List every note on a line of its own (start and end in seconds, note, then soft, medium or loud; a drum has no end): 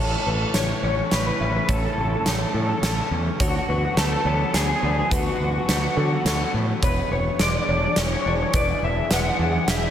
0.00 0.15 A1 medium
0.00 1.41 A2 medium
0.00 3.37 C#3 medium
0.00 3.37 A3 medium
0.00 3.37 E4 medium
0.00 0.26 C#5 medium
0.04 0.11 A4 medium
0.11 0.19 A4 medium
0.20 0.27 A4 medium
0.26 0.44 A1 medium
0.26 0.33 A4 medium
0.26 0.84 B4 medium
0.34 0.41 A4 medium
0.42 0.48 A4 medium
0.48 0.55 A4 soft
0.54 0.72 A1 medium
0.54 2.25 A3 medium
0.54 0.83 C#5 medium
0.54 snare medium
0.54 closed hi-hat medium
0.83 1.01 A1 medium
0.83 1.39 C#4 soft
0.83 1.40 C#5 medium
0.83 1.10 C#5 medium
1.11 1.30 A1 medium
1.11 2.55 E3 medium
1.11 1.20 B4 medium
1.11 snare medium
1.11 closed hi-hat medium
1.20 1.26 B4 medium
1.27 1.33 B4 medium
1.34 1.41 B4 medium
1.40 1.58 A1 medium
1.40 2.53 C#4 medium
1.40 1.49 B4 medium
1.40 1.69 E5 medium
1.49 1.56 B4 medium
1.56 1.64 B4 medium
1.65 1.86 A1 medium
1.65 1.69 B4 medium
1.69 3.12 A2 medium
1.69 1.78 A4 medium
1.69 2.24 C#5 medium
1.69 kick medium
1.69 closed hi-hat medium
1.78 1.85 A4 soft
1.85 1.92 A4 medium
1.93 2.00 A4 medium
1.98 2.15 A1 medium
1.98 2.09 A4 medium
2.09 2.15 A4 medium
2.16 2.23 A4 medium
2.25 2.43 A1 medium
2.25 3.97 A3 medium
2.25 2.31 A4 medium
2.25 2.55 C#5 medium
2.25 snare medium
2.25 closed hi-hat medium
2.31 2.39 A4 medium
2.40 2.47 A4 medium
2.47 2.54 A4 medium
2.54 2.72 A2 medium
2.54 3.10 C#4 medium
2.54 2.62 A4 medium
2.54 2.81 A4 medium
2.62 2.69 A4 medium
2.69 2.77 A4 medium
2.78 2.84 A4 medium
2.82 3.00 A1 medium
2.82 3.40 E3 medium
2.82 3.40 A4 medium
2.82 2.92 A4 medium
2.82 snare medium
2.82 closed hi-hat medium
2.93 3.01 A4 medium
3.02 3.10 A4 medium
3.11 3.29 E2 medium
3.11 3.40 C#4 medium
3.40 3.58 D2 medium
3.40 4.53 D3 medium
3.40 6.80 D3 medium
3.40 6.80 B3 medium
3.40 6.80 F#4 medium
3.40 3.47 F#4 medium
3.40 3.69 C#5 medium
3.40 kick medium
3.40 closed hi-hat medium
3.48 3.55 F#4 medium
3.56 3.62 F#4 medium
3.62 3.69 F#4 medium
3.68 3.86 D2 medium
3.68 3.77 F#4 medium
3.68 4.26 B4 medium
3.78 3.85 F#4 medium
3.85 3.91 F#4 medium
3.92 3.98 F#4 medium
3.97 4.15 D2 medium
3.97 5.40 A3 medium
3.97 4.05 A4 loud
3.97 snare medium
3.97 closed hi-hat medium
4.06 4.12 A4 medium
4.12 4.20 A4 medium
4.20 4.27 A4 medium
4.25 4.43 D2 medium
4.25 4.82 B3 medium
4.25 4.34 A4 medium
4.25 4.83 C#5 medium
4.35 4.42 A4 medium
4.42 4.49 A4 medium
4.50 4.71 D2 medium
4.50 4.54 A4 medium
4.54 5.10 D3 medium
4.54 4.62 G#4 medium
4.54 snare medium
4.54 closed hi-hat medium
4.62 4.69 G#4 medium
4.69 4.75 G#4 medium
4.76 4.83 G#4 medium
4.83 5.00 D2 medium
4.83 5.96 B3 medium
4.83 4.91 G#4 medium
4.83 5.12 D5 medium
4.91 4.98 G#4 medium
4.98 5.05 G#4 medium
5.05 5.12 G#4 medium
5.11 5.29 D2 medium
5.11 6.24 D3 medium
5.11 5.20 F#4 medium
5.11 5.67 B4 medium
5.11 kick medium
5.11 closed hi-hat medium
5.20 5.27 F#4 soft
5.27 5.35 F#4 medium
5.35 5.43 F#4 medium
5.40 5.57 D2 medium
5.44 5.50 F#4 medium
5.51 5.58 F#4 medium
5.58 5.66 F#4 medium
5.66 5.86 D2 medium
5.66 6.83 A3 medium
5.66 5.73 F#4 medium
5.66 5.97 B4 medium
5.66 snare medium
5.66 closed hi-hat medium
5.73 5.80 F#4 medium
5.81 5.88 F#4 medium
5.89 5.97 F#4 medium
5.97 6.14 D3 medium
5.97 6.54 B3 medium
5.97 6.04 F#4 medium
5.97 6.24 A4 medium
6.05 6.12 F#4 medium
6.13 6.20 F#4 medium
6.20 6.27 F#4 medium
6.25 6.43 D2 medium
6.25 6.83 D3 medium
6.25 6.35 F#4 medium
6.25 6.83 A4 medium
6.25 snare medium
6.25 closed hi-hat medium
6.35 6.43 F#4 medium
6.44 6.51 F#4 medium
6.54 6.71 A2 medium
6.54 7.68 B3 medium
6.82 7.00 E1 medium
6.82 8.25 E2 medium
6.82 9.90 E3 medium
6.82 9.90 D4 medium
6.82 9.90 G#4 medium
6.82 7.10 B4 medium
6.82 7.11 C#5 medium
6.82 kick medium
6.82 closed hi-hat medium
7.11 7.28 E1 medium
7.11 7.69 B4 medium
7.11 7.40 C#5 medium
7.39 7.57 E1 medium
7.39 8.83 G#3 medium
7.39 7.48 D5 medium
7.39 snare medium
7.39 closed hi-hat medium
7.49 7.55 D5 medium
7.56 7.62 D5 medium
7.62 7.70 D5 medium
7.68 7.86 E1 medium
7.68 8.24 D4 medium
7.68 8.25 C#5 medium
7.68 7.77 D5 medium
7.77 7.84 D5 medium
7.84 7.91 D5 medium
7.92 7.98 D5 medium
7.96 8.14 E1 medium
7.96 9.42 E3 medium
7.96 8.06 C#5 medium
7.96 snare medium
7.96 closed hi-hat medium
8.06 8.12 C#5 medium
8.13 8.20 C#5 medium
8.20 8.28 C#5 medium
8.25 8.43 E1 medium
8.25 9.38 D4 medium
8.25 8.34 C#5 medium
8.25 8.54 D5 medium
8.35 8.42 C#5 medium
8.42 8.48 C#5 medium
8.49 8.55 C#5 medium
8.53 8.71 E1 medium
8.53 9.90 E2 medium
8.53 9.10 B4 medium
8.53 8.84 D5 medium
8.53 kick medium
8.53 closed hi-hat medium
8.82 9.00 E1 medium
8.82 9.13 E5 medium
9.11 9.29 E1 medium
9.11 9.90 G#3 medium
9.11 9.40 B4 medium
9.11 9.20 F#5 loud
9.11 snare medium
9.11 closed hi-hat medium
9.20 9.28 F#5 medium
9.28 9.34 F#5 medium
9.35 9.42 F#5 medium
9.39 9.56 E2 medium
9.39 9.90 D4 medium
9.39 9.67 G#4 medium
9.39 9.50 F#5 medium
9.50 9.57 F#5 medium
9.57 9.64 F#5 medium
9.64 9.85 E1 medium
9.64 9.90 E3 medium
9.64 9.69 F#5 medium
9.64 snare medium
9.64 closed hi-hat medium
9.68 9.90 G#4 medium
9.68 9.76 E5 medium
9.77 9.83 E5 medium
9.83 9.90 E5 medium